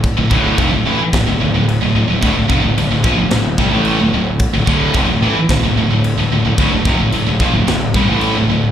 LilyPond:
<<
  \new Staff \with { instrumentName = "Distorted electric guitar" } { \clef bass \time 4/4 \key d \minor \tempo 4 = 110 r16 <d, a,>16 <d, a, d>8 <f, c>16 <d, a,>16 <a, e>16 r16 <d, a,>16 <d, a,>16 <d, a,>16 <d, a,>8 <d, a,>16 <d, a,>16 <d, a,>16 | <d, a,>16 <d, a,>16 <f, c>16 <d, a,>16 <d, a,>16 <d, a,>16 <bes, f>16 <d, a,>16 <d, a,>8 <c g>16 <a, e a>8 <d, a,>16 <d, a,>8 | r16 <d, a,>16 <d, a, d>8 <f, c>16 <d, a,>16 <a, e>16 r16 <d, a,>16 <d, a,>16 <d, a,>16 <d, a,>8 <d, a,>16 <d, a,>16 <d, a,>16 | <d, a,>16 <d, a,>16 <f, c>16 <d, a,>16 <d, a,>16 <d, a,>16 <bes, f>16 <d, a,>16 <d, a,>8 <c g>16 <a, e a>8 <d, a,>16 <d, a,>8 | }
  \new Staff \with { instrumentName = "Distorted electric guitar" } { \clef bass \time 4/4 \key d \minor r16 <d, a,>16 <d, a, d>8 <f, c>16 <d, a,>16 <a, e>16 r16 <d, a,>16 <d, a,>16 <d, a,>16 <d, a,>8 <d, a,>16 <d, a,>16 <d, a,>16 | <d, a,>16 <d, a,>16 <f, c>16 <d, a,>16 <d, a,>16 <d, a,>16 <bes, f>16 <d, a,>16 <d, a,>8 <c g>16 <a, e a>8 <d, a,>16 <d, a,>8 | r16 <d, a,>16 <d, a, d>8 <f, c>16 <d, a,>16 <a, e>16 r16 <d, a,>16 <d, a,>16 <d, a,>16 <d, a,>8 <d, a,>16 <d, a,>16 <d, a,>16 | <d, a,>16 <d, a,>16 <f, c>16 <d, a,>16 <d, a,>16 <d, a,>16 <bes, f>16 <d, a,>16 <d, a,>8 <c g>16 <a, e a>8 <d, a,>16 <d, a,>8 | }
  \new Staff \with { instrumentName = "Distorted electric guitar" } { \clef bass \time 4/4 \key d \minor r16 <d, a,>16 <d, a, d>8 <f, c>16 <d, a,>16 <a, e>16 r16 <d, a,>16 <d, a,>16 <d, a,>16 <d, a,>8 <d, a,>16 <d, a,>16 <d, a,>16 | <d, a,>16 <d, a,>16 <f, c>16 <d, a,>16 <d, a,>16 <d, a,>16 <bes, f>16 <d, a,>16 <d, a,>8 <c g>16 <a, e a>8 <d, a,>16 <d, a,>8 | r16 <d, a,>16 <d, a, d>8 <f, c>16 <d, a,>16 <a, e>16 r16 <d, a,>16 <d, a,>16 <d, a,>16 <d, a,>8 <d, a,>16 <d, a,>16 <d, a,>16 | <d, a,>16 <d, a,>16 <f, c>16 <d, a,>16 <d, a,>16 <d, a,>16 <bes, f>16 <d, a,>16 <d, a,>8 <c g>16 <a, e a>8 <d, a,>16 <d, a,>8 | }
  \new Staff \with { instrumentName = "Fingered electric bass" } { \clef bass \time 4/4 \key d \minor r16 d,,16 d,,8 f,,16 d,,16 a,,16 r16 d,,16 d,,16 d,,16 d,,8 d,,16 d,,16 d,,16 | d,,16 d,,16 f,,16 d,,16 d,,16 d,,16 bes,,16 d,,16 d,,8 c,16 a,,8 d,,16 d,,8 | r16 d,,16 d,,8 f,,16 d,,16 a,,16 r16 d,,16 d,,16 d,,16 d,,8 d,,16 d,,16 d,,16 | d,,16 d,,16 f,,16 d,,16 d,,16 d,,16 bes,,16 d,,16 d,,8 c,16 a,,8 d,,16 d,,8 | }
  \new DrumStaff \with { instrumentName = "Drums" } \drummode { \time 4/4 <cymc bd>8 bd8 <cymc bd>4 <cymc bd sn>4 cymc4 | <cymc bd>8 bd8 cymc8 bd8 <cymc sn>8 bd8 cymc4 | <cymc bd>8 bd8 <cymc bd>4 <cymc bd sn>4 cymc4 | <cymc bd>8 bd8 cymc8 bd8 <cymc sn>8 bd8 cymc4 | }
>>